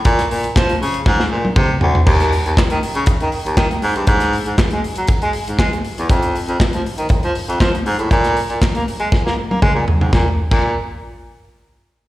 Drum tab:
CC |----------------|x---------------|----------------|----------------|
HH |xxox-xox--------|-xox-xoxxxox-xox|xxox-xoxxxox-xox|xxox-xoxxxox-xox|
CP |----x-----------|----x-------x---|----x-------x---|----x-------x---|
SD |-o--o---oo------|-o--o-------o---|-o--o-------o---|----o-------o---|
T1 |-----------o----|----------------|----------------|----------------|
T2 |------------o---|----------------|----------------|----------------|
FT |--------------oo|----------------|----------------|----------------|
BD |o---o---o---o---|o---o---o---o---|o---o---o---o---|o---o---o---o---|

CC |----------------|---x------------|
HH |xxox-xox--------|----------------|
CP |----x-----------|----------------|
SD |-o--o---oo------|o---------------|
T1 |-----------o----|----------------|
T2 |------------o---|----------------|
FT |--------------oo|----------------|
BD |o---o---o---o---|o--o------------|